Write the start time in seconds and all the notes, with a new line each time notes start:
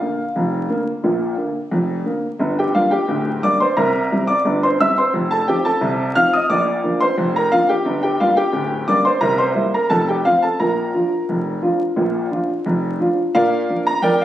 Already playing: F4 F5
0.01 D3 A#3
0.36 F1 F2
0.69 D3 A#3
1.04 A#1 A#2
1.37 D3 A#3
1.71 F1 F2
2.05 D3 A#3
2.39 G1 G2
2.59 G4 G5
2.75 G3 A#3 D4 F4 F5
2.91 G4 G5
3.08 D1 D2
3.43 G3 A#3 D4 D5 D6
3.60 C5 C6
3.77 C2 C3 A#4 A#5
4.12 G3 C4 E4
4.27 D5 D6
4.45 G1 G2
4.63 C5 C6
4.80 G3 C4 E4 E5 E6
4.98 C5 C6
5.14 F1 F2
5.31 A4 A5
5.48 F3 C4 D#4 G4 G5
5.65 A4 A5
5.81 C2 C3
6.15 F3 C4 D#4 F5 F6
6.33 D#5 D#6
6.50 A#1 A#2 D5 D6
6.83 F3 A#3 D4
7.00 C5 C6
7.18 F1 F2
7.36 A#4 A#5
7.52 F3 A#3 D4 F4 F5
7.69 G4 G5
7.85 G1 G2
8.03 G4 G5
8.20 G3 A#3 D4 F4 F5
8.37 G4 G5
8.53 D1 D2
8.88 G3 A#3 D4 D5 D6
9.05 C5 C6
9.21 C2 C3 A#4 A#5
9.38 C5 C6
9.55 G3 A#3 E4
9.74 A#4 A#5
9.90 F1 F2 A4 A5
10.09 G4 G5
10.25 F3 C4 F4 F5
10.42 A4 A5
10.60 A#1 A#2 A#4 A#5
10.94 F3 D4 F4
11.29 F1 F2
11.62 F3 D4 F4
11.96 A#1 A#2
12.31 F3 D4 F4
12.66 F1 F2
13.00 F3 D4 F4
13.35 A#2 D4 A#4 D5 F5
13.69 F3 A#3 D4
13.87 A#5
14.02 F2 A#4 D5 G5
14.21 F5